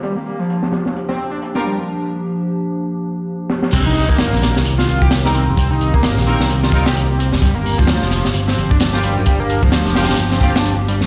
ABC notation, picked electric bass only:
X:1
M:4/4
L:1/16
Q:"Swing 16ths" 1/4=130
K:Cm
V:1 name="Picked electric bass" clef=bass
z16 | z16 | C,,3 G,,,2 B,,,2 C,,3 C,,4- C,, G,,, | C,,3 G,,,2 B,,,2 C,,3 C,,4- C,, G,,, |
G,,,3 D,,2 F,,,2 G,,,3 G,,,4- G,,, G,, | G,,,3 D,,2 F,,,2 G,,,3 G,,,4- G,,, G,, |]